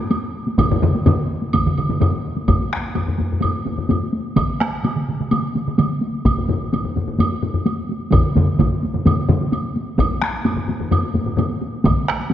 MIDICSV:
0, 0, Header, 1, 3, 480
1, 0, Start_track
1, 0, Tempo, 472813
1, 600, Time_signature, 4, 2, 24, 8
1, 6356, Tempo, 465839
1, 12616, End_track
2, 0, Start_track
2, 0, Title_t, "Taiko and cinematic ensemble drums"
2, 108, Note_on_c, 9, 48, 66
2, 209, Note_off_c, 9, 48, 0
2, 475, Note_on_c, 9, 48, 51
2, 577, Note_off_c, 9, 48, 0
2, 590, Note_on_c, 9, 41, 85
2, 595, Note_on_c, 9, 48, 64
2, 601, Note_on_c, 9, 47, 95
2, 606, Note_on_c, 9, 45, 98
2, 691, Note_off_c, 9, 41, 0
2, 697, Note_off_c, 9, 48, 0
2, 703, Note_off_c, 9, 47, 0
2, 708, Note_off_c, 9, 45, 0
2, 722, Note_on_c, 9, 47, 95
2, 727, Note_on_c, 9, 45, 99
2, 824, Note_off_c, 9, 47, 0
2, 829, Note_off_c, 9, 45, 0
2, 835, Note_on_c, 9, 45, 99
2, 840, Note_on_c, 9, 47, 105
2, 936, Note_off_c, 9, 45, 0
2, 941, Note_off_c, 9, 47, 0
2, 960, Note_on_c, 9, 48, 50
2, 1061, Note_off_c, 9, 48, 0
2, 1075, Note_on_c, 9, 45, 104
2, 1079, Note_on_c, 9, 48, 63
2, 1081, Note_on_c, 9, 47, 101
2, 1177, Note_off_c, 9, 45, 0
2, 1180, Note_off_c, 9, 48, 0
2, 1183, Note_off_c, 9, 47, 0
2, 1441, Note_on_c, 9, 48, 43
2, 1542, Note_off_c, 9, 48, 0
2, 1560, Note_on_c, 9, 48, 62
2, 1561, Note_on_c, 9, 47, 71
2, 1563, Note_on_c, 9, 45, 69
2, 1569, Note_on_c, 9, 41, 73
2, 1662, Note_off_c, 9, 47, 0
2, 1662, Note_off_c, 9, 48, 0
2, 1665, Note_off_c, 9, 45, 0
2, 1670, Note_off_c, 9, 41, 0
2, 1687, Note_on_c, 9, 47, 73
2, 1691, Note_on_c, 9, 45, 62
2, 1789, Note_off_c, 9, 47, 0
2, 1793, Note_off_c, 9, 45, 0
2, 1809, Note_on_c, 9, 45, 66
2, 1813, Note_on_c, 9, 47, 66
2, 1910, Note_off_c, 9, 45, 0
2, 1914, Note_off_c, 9, 47, 0
2, 1920, Note_on_c, 9, 48, 44
2, 1928, Note_on_c, 9, 45, 72
2, 1931, Note_on_c, 9, 47, 70
2, 2022, Note_off_c, 9, 48, 0
2, 2030, Note_off_c, 9, 45, 0
2, 2033, Note_off_c, 9, 47, 0
2, 2034, Note_on_c, 9, 48, 61
2, 2045, Note_on_c, 9, 45, 95
2, 2046, Note_on_c, 9, 47, 93
2, 2135, Note_off_c, 9, 48, 0
2, 2147, Note_off_c, 9, 45, 0
2, 2148, Note_off_c, 9, 47, 0
2, 2150, Note_on_c, 9, 48, 42
2, 2252, Note_off_c, 9, 48, 0
2, 2401, Note_on_c, 9, 48, 45
2, 2502, Note_off_c, 9, 48, 0
2, 2517, Note_on_c, 9, 41, 84
2, 2520, Note_on_c, 9, 48, 63
2, 2527, Note_on_c, 9, 45, 88
2, 2619, Note_off_c, 9, 41, 0
2, 2621, Note_off_c, 9, 48, 0
2, 2629, Note_off_c, 9, 45, 0
2, 2641, Note_on_c, 9, 48, 20
2, 2743, Note_off_c, 9, 48, 0
2, 2769, Note_on_c, 9, 37, 66
2, 2871, Note_off_c, 9, 37, 0
2, 2878, Note_on_c, 9, 48, 20
2, 2980, Note_off_c, 9, 48, 0
2, 2998, Note_on_c, 9, 48, 61
2, 3010, Note_on_c, 9, 45, 65
2, 3099, Note_off_c, 9, 48, 0
2, 3112, Note_off_c, 9, 45, 0
2, 3117, Note_on_c, 9, 48, 22
2, 3130, Note_on_c, 9, 45, 61
2, 3218, Note_off_c, 9, 48, 0
2, 3231, Note_off_c, 9, 45, 0
2, 3232, Note_on_c, 9, 48, 48
2, 3245, Note_on_c, 9, 45, 62
2, 3334, Note_off_c, 9, 48, 0
2, 3347, Note_off_c, 9, 45, 0
2, 3349, Note_on_c, 9, 48, 20
2, 3374, Note_on_c, 9, 45, 62
2, 3450, Note_off_c, 9, 48, 0
2, 3460, Note_on_c, 9, 48, 65
2, 3476, Note_off_c, 9, 45, 0
2, 3494, Note_on_c, 9, 45, 82
2, 3561, Note_off_c, 9, 48, 0
2, 3591, Note_on_c, 9, 48, 21
2, 3596, Note_off_c, 9, 45, 0
2, 3692, Note_off_c, 9, 48, 0
2, 3709, Note_on_c, 9, 48, 50
2, 3728, Note_on_c, 9, 45, 63
2, 3810, Note_off_c, 9, 48, 0
2, 3829, Note_off_c, 9, 45, 0
2, 3839, Note_on_c, 9, 45, 65
2, 3941, Note_off_c, 9, 45, 0
2, 3949, Note_on_c, 9, 48, 70
2, 3968, Note_on_c, 9, 45, 82
2, 4050, Note_off_c, 9, 48, 0
2, 4069, Note_off_c, 9, 45, 0
2, 4078, Note_on_c, 9, 48, 21
2, 4180, Note_off_c, 9, 48, 0
2, 4189, Note_on_c, 9, 48, 52
2, 4291, Note_off_c, 9, 48, 0
2, 4310, Note_on_c, 9, 48, 22
2, 4412, Note_off_c, 9, 48, 0
2, 4428, Note_on_c, 9, 48, 70
2, 4432, Note_on_c, 9, 47, 84
2, 4434, Note_on_c, 9, 41, 88
2, 4530, Note_off_c, 9, 48, 0
2, 4534, Note_off_c, 9, 47, 0
2, 4535, Note_off_c, 9, 41, 0
2, 4559, Note_on_c, 9, 48, 22
2, 4660, Note_off_c, 9, 48, 0
2, 4674, Note_on_c, 9, 37, 71
2, 4679, Note_on_c, 9, 48, 57
2, 4776, Note_off_c, 9, 37, 0
2, 4781, Note_off_c, 9, 48, 0
2, 4806, Note_on_c, 9, 48, 22
2, 4907, Note_off_c, 9, 48, 0
2, 4908, Note_on_c, 9, 47, 60
2, 4919, Note_on_c, 9, 48, 69
2, 5010, Note_off_c, 9, 47, 0
2, 5021, Note_off_c, 9, 48, 0
2, 5035, Note_on_c, 9, 47, 62
2, 5038, Note_on_c, 9, 48, 24
2, 5137, Note_off_c, 9, 47, 0
2, 5140, Note_off_c, 9, 48, 0
2, 5163, Note_on_c, 9, 47, 62
2, 5265, Note_off_c, 9, 47, 0
2, 5278, Note_on_c, 9, 48, 20
2, 5286, Note_on_c, 9, 47, 65
2, 5379, Note_off_c, 9, 48, 0
2, 5387, Note_off_c, 9, 47, 0
2, 5393, Note_on_c, 9, 48, 66
2, 5405, Note_on_c, 9, 47, 92
2, 5495, Note_off_c, 9, 48, 0
2, 5506, Note_off_c, 9, 47, 0
2, 5515, Note_on_c, 9, 48, 21
2, 5617, Note_off_c, 9, 48, 0
2, 5636, Note_on_c, 9, 48, 52
2, 5646, Note_on_c, 9, 47, 62
2, 5738, Note_off_c, 9, 48, 0
2, 5747, Note_off_c, 9, 47, 0
2, 5762, Note_on_c, 9, 47, 63
2, 5864, Note_off_c, 9, 47, 0
2, 5873, Note_on_c, 9, 48, 66
2, 5882, Note_on_c, 9, 47, 88
2, 5974, Note_off_c, 9, 48, 0
2, 5983, Note_off_c, 9, 47, 0
2, 5994, Note_on_c, 9, 48, 21
2, 6095, Note_off_c, 9, 48, 0
2, 6108, Note_on_c, 9, 48, 49
2, 6209, Note_off_c, 9, 48, 0
2, 6228, Note_on_c, 9, 48, 20
2, 6329, Note_off_c, 9, 48, 0
2, 6347, Note_on_c, 9, 41, 85
2, 6347, Note_on_c, 9, 45, 64
2, 6348, Note_on_c, 9, 48, 66
2, 6450, Note_off_c, 9, 41, 0
2, 6450, Note_off_c, 9, 45, 0
2, 6451, Note_off_c, 9, 48, 0
2, 6469, Note_on_c, 9, 48, 20
2, 6481, Note_on_c, 9, 45, 66
2, 6572, Note_off_c, 9, 48, 0
2, 6584, Note_off_c, 9, 45, 0
2, 6586, Note_on_c, 9, 48, 55
2, 6595, Note_on_c, 9, 45, 89
2, 6689, Note_off_c, 9, 48, 0
2, 6698, Note_off_c, 9, 45, 0
2, 6718, Note_on_c, 9, 48, 22
2, 6821, Note_off_c, 9, 48, 0
2, 6837, Note_on_c, 9, 48, 65
2, 6846, Note_on_c, 9, 45, 69
2, 6940, Note_off_c, 9, 48, 0
2, 6949, Note_off_c, 9, 45, 0
2, 6963, Note_on_c, 9, 45, 64
2, 6963, Note_on_c, 9, 48, 22
2, 7066, Note_off_c, 9, 45, 0
2, 7066, Note_off_c, 9, 48, 0
2, 7076, Note_on_c, 9, 48, 53
2, 7087, Note_on_c, 9, 45, 65
2, 7179, Note_off_c, 9, 48, 0
2, 7190, Note_off_c, 9, 45, 0
2, 7196, Note_on_c, 9, 48, 20
2, 7199, Note_on_c, 9, 45, 66
2, 7299, Note_off_c, 9, 48, 0
2, 7302, Note_off_c, 9, 45, 0
2, 7309, Note_on_c, 9, 48, 63
2, 7315, Note_on_c, 9, 45, 86
2, 7412, Note_off_c, 9, 48, 0
2, 7418, Note_off_c, 9, 45, 0
2, 7432, Note_on_c, 9, 48, 20
2, 7535, Note_off_c, 9, 48, 0
2, 7556, Note_on_c, 9, 45, 67
2, 7560, Note_on_c, 9, 48, 53
2, 7659, Note_off_c, 9, 45, 0
2, 7663, Note_off_c, 9, 48, 0
2, 7674, Note_on_c, 9, 45, 67
2, 7777, Note_off_c, 9, 45, 0
2, 7794, Note_on_c, 9, 48, 68
2, 7897, Note_off_c, 9, 48, 0
2, 8037, Note_on_c, 9, 48, 48
2, 8140, Note_off_c, 9, 48, 0
2, 8153, Note_on_c, 9, 48, 20
2, 8256, Note_off_c, 9, 48, 0
2, 8264, Note_on_c, 9, 48, 65
2, 8278, Note_on_c, 9, 47, 89
2, 8281, Note_on_c, 9, 41, 94
2, 8285, Note_on_c, 9, 45, 91
2, 8367, Note_off_c, 9, 48, 0
2, 8381, Note_off_c, 9, 47, 0
2, 8384, Note_off_c, 9, 41, 0
2, 8388, Note_off_c, 9, 45, 0
2, 8392, Note_on_c, 9, 48, 20
2, 8495, Note_off_c, 9, 48, 0
2, 8514, Note_on_c, 9, 48, 49
2, 8523, Note_on_c, 9, 45, 97
2, 8526, Note_on_c, 9, 47, 96
2, 8617, Note_off_c, 9, 48, 0
2, 8626, Note_off_c, 9, 45, 0
2, 8629, Note_off_c, 9, 47, 0
2, 8639, Note_on_c, 9, 48, 19
2, 8742, Note_off_c, 9, 48, 0
2, 8758, Note_on_c, 9, 47, 95
2, 8760, Note_on_c, 9, 45, 94
2, 8760, Note_on_c, 9, 48, 62
2, 8764, Note_on_c, 9, 41, 68
2, 8861, Note_off_c, 9, 47, 0
2, 8863, Note_off_c, 9, 45, 0
2, 8863, Note_off_c, 9, 48, 0
2, 8867, Note_off_c, 9, 41, 0
2, 8881, Note_on_c, 9, 48, 21
2, 8984, Note_off_c, 9, 48, 0
2, 9001, Note_on_c, 9, 48, 51
2, 9104, Note_off_c, 9, 48, 0
2, 9114, Note_on_c, 9, 47, 66
2, 9119, Note_on_c, 9, 45, 63
2, 9120, Note_on_c, 9, 48, 19
2, 9217, Note_off_c, 9, 47, 0
2, 9222, Note_off_c, 9, 45, 0
2, 9223, Note_off_c, 9, 48, 0
2, 9236, Note_on_c, 9, 48, 64
2, 9238, Note_on_c, 9, 47, 90
2, 9244, Note_on_c, 9, 45, 88
2, 9339, Note_off_c, 9, 48, 0
2, 9341, Note_off_c, 9, 47, 0
2, 9347, Note_off_c, 9, 45, 0
2, 9361, Note_on_c, 9, 48, 22
2, 9464, Note_off_c, 9, 48, 0
2, 9474, Note_on_c, 9, 45, 92
2, 9480, Note_on_c, 9, 47, 89
2, 9481, Note_on_c, 9, 48, 50
2, 9577, Note_off_c, 9, 45, 0
2, 9583, Note_off_c, 9, 47, 0
2, 9584, Note_off_c, 9, 48, 0
2, 9601, Note_on_c, 9, 48, 45
2, 9704, Note_off_c, 9, 48, 0
2, 9720, Note_on_c, 9, 48, 64
2, 9823, Note_off_c, 9, 48, 0
2, 9836, Note_on_c, 9, 48, 21
2, 9939, Note_off_c, 9, 48, 0
2, 9959, Note_on_c, 9, 48, 53
2, 10062, Note_off_c, 9, 48, 0
2, 10086, Note_on_c, 9, 48, 22
2, 10189, Note_off_c, 9, 48, 0
2, 10196, Note_on_c, 9, 41, 86
2, 10196, Note_on_c, 9, 48, 70
2, 10197, Note_on_c, 9, 45, 93
2, 10299, Note_off_c, 9, 41, 0
2, 10299, Note_off_c, 9, 48, 0
2, 10300, Note_off_c, 9, 45, 0
2, 10321, Note_on_c, 9, 48, 22
2, 10424, Note_off_c, 9, 48, 0
2, 10436, Note_on_c, 9, 37, 72
2, 10439, Note_on_c, 9, 48, 55
2, 10539, Note_off_c, 9, 37, 0
2, 10542, Note_off_c, 9, 48, 0
2, 10556, Note_on_c, 9, 48, 22
2, 10659, Note_off_c, 9, 48, 0
2, 10674, Note_on_c, 9, 45, 69
2, 10676, Note_on_c, 9, 48, 70
2, 10777, Note_off_c, 9, 45, 0
2, 10779, Note_off_c, 9, 48, 0
2, 10789, Note_on_c, 9, 45, 66
2, 10799, Note_on_c, 9, 48, 23
2, 10892, Note_off_c, 9, 45, 0
2, 10902, Note_off_c, 9, 48, 0
2, 10905, Note_on_c, 9, 45, 67
2, 10920, Note_on_c, 9, 48, 56
2, 11008, Note_off_c, 9, 45, 0
2, 11023, Note_off_c, 9, 48, 0
2, 11033, Note_on_c, 9, 45, 70
2, 11039, Note_on_c, 9, 48, 20
2, 11137, Note_off_c, 9, 45, 0
2, 11142, Note_off_c, 9, 48, 0
2, 11149, Note_on_c, 9, 45, 93
2, 11154, Note_on_c, 9, 48, 70
2, 11252, Note_off_c, 9, 45, 0
2, 11257, Note_off_c, 9, 48, 0
2, 11277, Note_on_c, 9, 48, 23
2, 11380, Note_off_c, 9, 48, 0
2, 11383, Note_on_c, 9, 45, 71
2, 11396, Note_on_c, 9, 48, 53
2, 11486, Note_off_c, 9, 45, 0
2, 11499, Note_off_c, 9, 48, 0
2, 11507, Note_on_c, 9, 45, 71
2, 11610, Note_off_c, 9, 45, 0
2, 11621, Note_on_c, 9, 45, 96
2, 11638, Note_on_c, 9, 48, 73
2, 11724, Note_off_c, 9, 45, 0
2, 11741, Note_off_c, 9, 48, 0
2, 11765, Note_on_c, 9, 48, 20
2, 11868, Note_off_c, 9, 48, 0
2, 11876, Note_on_c, 9, 48, 56
2, 11979, Note_off_c, 9, 48, 0
2, 11997, Note_on_c, 9, 48, 22
2, 12100, Note_off_c, 9, 48, 0
2, 12106, Note_on_c, 9, 48, 72
2, 12114, Note_on_c, 9, 41, 92
2, 12118, Note_on_c, 9, 47, 96
2, 12209, Note_off_c, 9, 48, 0
2, 12217, Note_off_c, 9, 41, 0
2, 12221, Note_off_c, 9, 47, 0
2, 12231, Note_on_c, 9, 48, 21
2, 12334, Note_off_c, 9, 48, 0
2, 12357, Note_on_c, 9, 37, 80
2, 12460, Note_off_c, 9, 37, 0
2, 12479, Note_on_c, 9, 48, 22
2, 12582, Note_off_c, 9, 48, 0
2, 12616, End_track
3, 0, Start_track
3, 0, Title_t, "Drums"
3, 109, Note_on_c, 9, 76, 45
3, 210, Note_off_c, 9, 76, 0
3, 597, Note_on_c, 9, 76, 58
3, 699, Note_off_c, 9, 76, 0
3, 1078, Note_on_c, 9, 76, 43
3, 1179, Note_off_c, 9, 76, 0
3, 1555, Note_on_c, 9, 76, 60
3, 1657, Note_off_c, 9, 76, 0
3, 1803, Note_on_c, 9, 76, 41
3, 1904, Note_off_c, 9, 76, 0
3, 2047, Note_on_c, 9, 76, 43
3, 2148, Note_off_c, 9, 76, 0
3, 2518, Note_on_c, 9, 76, 50
3, 2620, Note_off_c, 9, 76, 0
3, 2997, Note_on_c, 9, 76, 38
3, 3099, Note_off_c, 9, 76, 0
3, 3476, Note_on_c, 9, 76, 50
3, 3577, Note_off_c, 9, 76, 0
3, 3967, Note_on_c, 9, 76, 39
3, 4069, Note_off_c, 9, 76, 0
3, 4432, Note_on_c, 9, 76, 50
3, 4534, Note_off_c, 9, 76, 0
3, 4916, Note_on_c, 9, 76, 41
3, 5018, Note_off_c, 9, 76, 0
3, 5394, Note_on_c, 9, 76, 52
3, 5495, Note_off_c, 9, 76, 0
3, 5875, Note_on_c, 9, 76, 44
3, 5977, Note_off_c, 9, 76, 0
3, 6356, Note_on_c, 9, 76, 54
3, 6459, Note_off_c, 9, 76, 0
3, 6847, Note_on_c, 9, 76, 41
3, 6950, Note_off_c, 9, 76, 0
3, 7326, Note_on_c, 9, 76, 54
3, 7429, Note_off_c, 9, 76, 0
3, 7801, Note_on_c, 9, 76, 38
3, 7904, Note_off_c, 9, 76, 0
3, 8275, Note_on_c, 9, 76, 50
3, 8378, Note_off_c, 9, 76, 0
3, 8769, Note_on_c, 9, 76, 38
3, 8872, Note_off_c, 9, 76, 0
3, 9250, Note_on_c, 9, 76, 50
3, 9353, Note_off_c, 9, 76, 0
3, 9726, Note_on_c, 9, 76, 42
3, 9829, Note_off_c, 9, 76, 0
3, 10210, Note_on_c, 9, 76, 54
3, 10313, Note_off_c, 9, 76, 0
3, 10682, Note_on_c, 9, 76, 40
3, 10785, Note_off_c, 9, 76, 0
3, 11159, Note_on_c, 9, 76, 51
3, 11262, Note_off_c, 9, 76, 0
3, 11636, Note_on_c, 9, 76, 38
3, 11739, Note_off_c, 9, 76, 0
3, 12121, Note_on_c, 9, 76, 48
3, 12224, Note_off_c, 9, 76, 0
3, 12616, End_track
0, 0, End_of_file